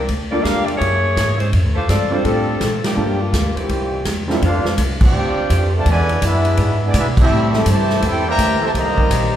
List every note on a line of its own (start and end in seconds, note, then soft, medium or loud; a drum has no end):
0.08 0.43 D2 medium
0.08 kick soft
0.08 ride medium
0.31 0.78 G3 medium
0.31 0.43 A#3 medium
0.31 0.78 A#3 medium
0.31 0.78 D4 medium
0.31 0.43 F4 medium
0.31 0.78 F4 medium
0.31 0.40 G4 medium
0.31 0.78 A4 medium
0.31 0.43 D5 loud
0.41 0.79 E2 medium
0.41 0.66 D4 medium
0.41 0.64 G4 medium
0.41 0.66 A#4 medium
0.41 0.66 F5 loud
0.41 kick soft
0.41 snare medium
0.41 hi-hat pedal soft
0.41 ride medium
0.64 0.76 A#3 medium
0.64 0.79 F4 medium
0.64 0.79 G4 medium
0.64 0.79 D5 medium
0.64 ride soft
0.77 1.16 F#2 medium
0.77 1.34 A#3 medium
0.77 1.34 E4 medium
0.77 1.34 G#4 medium
0.77 1.34 C#5 loud
0.77 kick soft
0.81 ride medium
1.17 1.52 G#2 medium
1.17 kick soft
1.17 snare medium
1.17 hi-hat pedal medium
1.17 ride medium
1.38 1.51 G#3 medium
1.38 1.51 C#4 medium
1.38 1.51 E4 medium
1.38 1.51 C5 medium
1.38 ride soft
1.53 1.65 F2 medium
1.53 kick soft
1.53 ride medium
1.65 1.76 D2 medium
1.75 1.88 C2 medium
1.75 1.87 A3 medium
1.75 1.87 D4 medium
1.75 1.87 F4 medium
1.75 1.87 C5 medium
1.88 2.24 G2 medium
1.88 2.11 C4 medium
1.88 2.11 F4 medium
1.88 2.11 A4 medium
1.88 2.11 D5 medium
1.88 kick soft
1.88 snare medium
1.88 hi-hat pedal medium
1.88 ride medium
2.11 2.58 G3 medium
2.11 2.25 A3 medium
2.11 2.58 C4 medium
2.11 2.58 D4 medium
2.11 2.24 D4 medium
2.11 2.58 F4 medium
2.11 2.25 F4 medium
2.11 2.58 A4 medium
2.11 2.25 C5 medium
2.25 2.60 A2 medium
2.25 2.80 F3 medium
2.25 2.81 C4 medium
2.25 2.81 D4 medium
2.25 2.80 A4 medium
2.25 kick soft
2.25 ride medium
2.60 2.96 A#2 medium
2.60 kick soft
2.60 snare medium
2.60 hi-hat pedal medium
2.60 ride medium
2.84 3.21 F3 medium
2.84 3.19 A#3 medium
2.84 3.20 D4 medium
2.84 3.21 G4 medium
2.84 snare medium
2.84 ride medium
2.95 3.32 G2 medium
2.95 3.17 G3 medium
2.95 3.18 A#3 medium
2.95 3.17 D4 medium
2.95 3.18 F4 medium
2.95 3.18 A4 medium
3.20 3.56 G3 medium
3.20 3.55 A#3 medium
3.20 3.57 D4 medium
3.20 3.57 F4 medium
3.33 3.55 D2 medium
3.33 kick soft
3.33 snare medium
3.33 hi-hat pedal medium
3.33 ride medium
3.56 4.05 A#2 medium
3.56 4.05 E3 medium
3.56 4.05 G3 medium
3.56 4.05 A#3 medium
3.56 4.06 C4 medium
3.56 4.05 G4 medium
3.56 muted upright bass stroke soft
3.56 ride soft
3.69 4.04 C2 medium
3.69 kick soft
3.69 ride medium
4.05 4.40 E2 medium
4.05 kick soft
4.05 snare medium
4.05 hi-hat pedal soft
4.05 ride medium
4.28 4.40 G3 medium
4.28 4.36 G3 medium
4.28 4.36 A#3 medium
4.28 4.40 C4 medium
4.28 4.35 C4 medium
4.28 4.40 D4 medium
4.28 4.36 E4 medium
4.28 4.40 F4 medium
4.28 4.35 G4 medium
4.28 4.41 A4 medium
4.28 4.35 A#4 medium
4.28 4.36 E5 medium
4.28 snare soft
4.42 4.63 F2 medium
4.42 4.97 A3 medium
4.42 4.76 C4 medium
4.42 4.97 D4 medium
4.42 4.76 D4 medium
4.42 4.77 D4 medium
4.42 4.97 F4 medium
4.42 4.76 F4 medium
4.42 4.76 A4 medium
4.42 4.97 C5 loud
4.42 4.76 C5 medium
4.42 4.77 F5 medium
4.42 kick soft
4.42 ride medium
4.64 muted upright bass stroke soft
4.64 snare medium
4.77 5.13 C2 medium
4.77 kick soft
4.77 hi-hat pedal medium
4.77 ride medium
5.01 5.70 C4 medium
5.01 5.70 D4 medium
5.01 5.70 F4 medium
5.01 5.70 G4 medium
5.01 5.70 C5 medium
5.01 5.70 D5 medium
5.01 5.70 G5 loud
5.01 kick loud
5.01 crash medium
5.13 5.35 D2 medium
5.37 muted upright bass stroke soft
5.50 5.85 F2 loud
5.50 kick soft
5.50 hi-hat pedal medium
5.50 ride medium
5.74 5.87 C3 medium
5.74 5.87 D3 medium
5.74 5.87 A3 medium
5.74 5.88 F4 medium
5.74 5.88 C5 medium
5.74 5.88 D5 medium
5.74 5.88 A5 medium
5.86 6.21 E2 medium
5.86 6.21 G#3 medium
5.86 kick soft
5.86 ride medium
5.90 6.22 B2 medium
5.90 6.22 D3 medium
5.90 6.22 E4 medium
5.90 6.22 B4 medium
5.90 6.22 D5 medium
5.90 6.22 G#5 loud
6.09 ride medium
6.22 6.57 F#2 loud
6.22 6.78 G#3 medium
6.22 6.78 B3 medium
6.22 6.78 E4 medium
6.22 kick soft
6.22 hi-hat pedal medium
6.22 ride medium
6.26 6.79 D4 medium
6.26 6.80 G#4 medium
6.26 6.79 B4 medium
6.26 6.79 E5 loud
6.45 ride medium
6.56 6.93 G#2 medium
6.56 7.12 G#3 medium
6.56 7.12 D4 medium
6.56 7.12 E4 medium
6.56 7.12 B4 loud
6.56 kick soft
6.56 ride medium
6.85 6.96 G#3 medium
6.85 6.96 B3 medium
6.85 6.97 B3 medium
6.85 6.96 D4 medium
6.85 6.97 E4 medium
6.85 6.96 G#4 medium
6.85 6.97 D5 loud
6.94 7.29 B2 loud
6.94 7.07 G#3 medium
6.94 7.07 B3 medium
6.94 7.07 E4 medium
6.94 7.07 B4 medium
6.94 7.07 E5 medium
6.94 kick soft
6.94 hi-hat pedal medium
6.94 ride medium
6.98 7.08 D4 medium
6.98 7.08 G#4 medium
7.17 7.65 G3 loud
7.17 7.65 C4 medium
7.17 7.65 E4 medium
7.17 kick loud
7.17 crash medium
7.22 7.65 C4 medium
7.22 7.65 G4 medium
7.22 7.65 A4 medium
7.22 7.65 E5 loud
7.30 7.65 A2 loud
7.53 7.99 G3 loud
7.53 7.99 C4 loud
7.53 7.99 E4 medium
7.53 7.99 A4 loud
7.53 snare medium
7.66 8.01 G2 loud
7.66 8.03 C3 medium
7.66 8.03 E3 medium
7.66 8.03 A3 medium
7.66 8.04 C5 medium
7.66 kick soft
7.66 hi-hat pedal medium
7.66 ride medium
7.70 8.04 G4 medium
7.70 8.04 E5 medium
7.70 8.04 A5 loud
7.90 snare soft
8.02 8.37 E2 medium
8.02 8.27 C4 medium
8.02 8.27 E4 medium
8.02 8.27 G4 medium
8.02 kick soft
8.02 ride medium
8.08 8.28 E4 medium
8.08 8.29 A4 medium
8.08 8.28 C5 loud
8.08 8.29 G5 loud
8.27 8.60 E3 loud
8.27 8.60 G3 medium
8.27 8.60 A#3 loud
8.27 8.61 G4 loud
8.27 8.61 C5 loud
8.27 8.61 E5 loud
8.27 8.61 A#5 loud
8.38 8.60 D2 loud
8.38 kick soft
8.38 hi-hat pedal medium
8.38 ride medium
8.61 8.67 C3 medium
8.61 8.67 E3 medium
8.61 8.68 A3 medium
8.61 8.70 C5 medium
8.61 8.70 E5 medium
8.61 muted upright bass stroke soft
8.65 8.71 G4 medium
8.65 8.70 A5 loud
8.74 8.96 C2 medium
8.74 9.36 D#3 loud
8.74 9.36 G3 medium
8.74 9.36 A#3 medium
8.74 9.36 G4 medium
8.74 9.36 C5 loud
8.74 9.36 D#5 medium
8.74 9.36 A#5 loud
8.74 kick soft
8.74 ride medium
8.97 9.36 G3 medium
8.97 9.36 C4 medium
8.97 9.36 D#4 medium
8.97 9.36 A#4 loud
8.97 muted upright bass stroke soft
8.97 kick medium
9.10 9.36 A#1 medium
9.10 kick soft
9.10 hi-hat pedal medium
9.10 ride medium